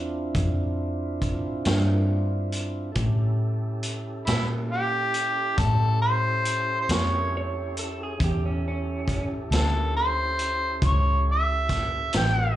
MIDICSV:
0, 0, Header, 1, 6, 480
1, 0, Start_track
1, 0, Tempo, 873362
1, 1627, Time_signature, 12, 3, 24, 8
1, 6903, End_track
2, 0, Start_track
2, 0, Title_t, "Harmonica"
2, 0, Program_c, 0, 22
2, 2346, Note_on_c, 0, 64, 64
2, 2434, Note_off_c, 0, 64, 0
2, 2590, Note_on_c, 0, 67, 82
2, 3066, Note_on_c, 0, 69, 72
2, 3075, Note_off_c, 0, 67, 0
2, 3306, Note_off_c, 0, 69, 0
2, 3309, Note_on_c, 0, 72, 84
2, 3727, Note_off_c, 0, 72, 0
2, 3744, Note_on_c, 0, 72, 63
2, 3801, Note_on_c, 0, 73, 71
2, 3809, Note_off_c, 0, 72, 0
2, 4033, Note_off_c, 0, 73, 0
2, 5234, Note_on_c, 0, 69, 67
2, 5454, Note_off_c, 0, 69, 0
2, 5479, Note_on_c, 0, 72, 78
2, 5931, Note_off_c, 0, 72, 0
2, 5967, Note_on_c, 0, 73, 74
2, 6181, Note_off_c, 0, 73, 0
2, 6220, Note_on_c, 0, 76, 85
2, 6662, Note_off_c, 0, 76, 0
2, 6687, Note_on_c, 0, 79, 76
2, 6902, Note_off_c, 0, 79, 0
2, 6903, End_track
3, 0, Start_track
3, 0, Title_t, "Clean electric guitar"
3, 0, Program_c, 1, 27
3, 4050, Note_on_c, 1, 73, 81
3, 4271, Note_off_c, 1, 73, 0
3, 4281, Note_on_c, 1, 69, 66
3, 4390, Note_off_c, 1, 69, 0
3, 4414, Note_on_c, 1, 68, 62
3, 4517, Note_off_c, 1, 68, 0
3, 4529, Note_on_c, 1, 67, 75
3, 4634, Note_off_c, 1, 67, 0
3, 4647, Note_on_c, 1, 61, 68
3, 4753, Note_off_c, 1, 61, 0
3, 4770, Note_on_c, 1, 61, 74
3, 5108, Note_off_c, 1, 61, 0
3, 6903, End_track
4, 0, Start_track
4, 0, Title_t, "Tonewheel organ"
4, 0, Program_c, 2, 16
4, 0, Note_on_c, 2, 60, 59
4, 0, Note_on_c, 2, 62, 64
4, 0, Note_on_c, 2, 64, 55
4, 0, Note_on_c, 2, 65, 60
4, 1598, Note_off_c, 2, 62, 0
4, 1599, Note_off_c, 2, 60, 0
4, 1603, Note_off_c, 2, 64, 0
4, 1603, Note_off_c, 2, 65, 0
4, 1605, Note_on_c, 2, 69, 56
4, 1612, Note_on_c, 2, 61, 59
4, 1612, Note_on_c, 2, 64, 61
4, 1618, Note_on_c, 2, 67, 60
4, 4473, Note_off_c, 2, 69, 0
4, 4476, Note_off_c, 2, 61, 0
4, 4476, Note_off_c, 2, 64, 0
4, 4479, Note_off_c, 2, 67, 0
4, 4494, Note_on_c, 2, 64, 62
4, 4496, Note_on_c, 2, 61, 60
4, 4497, Note_on_c, 2, 67, 63
4, 4499, Note_on_c, 2, 69, 63
4, 6903, Note_off_c, 2, 61, 0
4, 6903, Note_off_c, 2, 64, 0
4, 6903, Note_off_c, 2, 67, 0
4, 6903, Note_off_c, 2, 69, 0
4, 6903, End_track
5, 0, Start_track
5, 0, Title_t, "Fingered electric bass"
5, 0, Program_c, 3, 33
5, 0, Note_on_c, 3, 40, 78
5, 166, Note_off_c, 3, 40, 0
5, 196, Note_on_c, 3, 41, 73
5, 890, Note_off_c, 3, 41, 0
5, 912, Note_on_c, 3, 43, 72
5, 1607, Note_off_c, 3, 43, 0
5, 1624, Note_on_c, 3, 45, 72
5, 2323, Note_off_c, 3, 45, 0
5, 2351, Note_on_c, 3, 46, 77
5, 3047, Note_off_c, 3, 46, 0
5, 3067, Note_on_c, 3, 45, 76
5, 3765, Note_off_c, 3, 45, 0
5, 3788, Note_on_c, 3, 41, 76
5, 4485, Note_off_c, 3, 41, 0
5, 4508, Note_on_c, 3, 40, 71
5, 5206, Note_off_c, 3, 40, 0
5, 5227, Note_on_c, 3, 38, 77
5, 5926, Note_off_c, 3, 38, 0
5, 5946, Note_on_c, 3, 37, 71
5, 6646, Note_off_c, 3, 37, 0
5, 6676, Note_on_c, 3, 33, 71
5, 6903, Note_off_c, 3, 33, 0
5, 6903, End_track
6, 0, Start_track
6, 0, Title_t, "Drums"
6, 191, Note_on_c, 9, 36, 87
6, 192, Note_on_c, 9, 42, 66
6, 246, Note_off_c, 9, 36, 0
6, 247, Note_off_c, 9, 42, 0
6, 669, Note_on_c, 9, 36, 71
6, 669, Note_on_c, 9, 42, 52
6, 724, Note_off_c, 9, 36, 0
6, 724, Note_off_c, 9, 42, 0
6, 907, Note_on_c, 9, 42, 68
6, 917, Note_on_c, 9, 38, 100
6, 962, Note_off_c, 9, 42, 0
6, 972, Note_off_c, 9, 38, 0
6, 1386, Note_on_c, 9, 42, 49
6, 1441, Note_off_c, 9, 42, 0
6, 1623, Note_on_c, 9, 42, 59
6, 1626, Note_on_c, 9, 36, 88
6, 1678, Note_off_c, 9, 42, 0
6, 1681, Note_off_c, 9, 36, 0
6, 2103, Note_on_c, 9, 42, 49
6, 2158, Note_off_c, 9, 42, 0
6, 2346, Note_on_c, 9, 42, 69
6, 2355, Note_on_c, 9, 38, 92
6, 2401, Note_off_c, 9, 42, 0
6, 2410, Note_off_c, 9, 38, 0
6, 2824, Note_on_c, 9, 42, 52
6, 2879, Note_off_c, 9, 42, 0
6, 3066, Note_on_c, 9, 36, 90
6, 3066, Note_on_c, 9, 42, 71
6, 3121, Note_off_c, 9, 36, 0
6, 3121, Note_off_c, 9, 42, 0
6, 3546, Note_on_c, 9, 42, 59
6, 3601, Note_off_c, 9, 42, 0
6, 3787, Note_on_c, 9, 42, 78
6, 3797, Note_on_c, 9, 38, 102
6, 3842, Note_off_c, 9, 42, 0
6, 3852, Note_off_c, 9, 38, 0
6, 4269, Note_on_c, 9, 42, 53
6, 4324, Note_off_c, 9, 42, 0
6, 4508, Note_on_c, 9, 36, 85
6, 4508, Note_on_c, 9, 42, 62
6, 4563, Note_off_c, 9, 36, 0
6, 4563, Note_off_c, 9, 42, 0
6, 4988, Note_on_c, 9, 36, 63
6, 4994, Note_on_c, 9, 42, 52
6, 5043, Note_off_c, 9, 36, 0
6, 5049, Note_off_c, 9, 42, 0
6, 5232, Note_on_c, 9, 42, 70
6, 5241, Note_on_c, 9, 38, 91
6, 5287, Note_off_c, 9, 42, 0
6, 5296, Note_off_c, 9, 38, 0
6, 5709, Note_on_c, 9, 42, 51
6, 5764, Note_off_c, 9, 42, 0
6, 5946, Note_on_c, 9, 42, 66
6, 5947, Note_on_c, 9, 36, 94
6, 6001, Note_off_c, 9, 42, 0
6, 6002, Note_off_c, 9, 36, 0
6, 6426, Note_on_c, 9, 42, 54
6, 6427, Note_on_c, 9, 36, 67
6, 6435, Note_on_c, 9, 38, 27
6, 6481, Note_off_c, 9, 42, 0
6, 6482, Note_off_c, 9, 36, 0
6, 6490, Note_off_c, 9, 38, 0
6, 6665, Note_on_c, 9, 42, 75
6, 6674, Note_on_c, 9, 38, 104
6, 6720, Note_off_c, 9, 42, 0
6, 6729, Note_off_c, 9, 38, 0
6, 6903, End_track
0, 0, End_of_file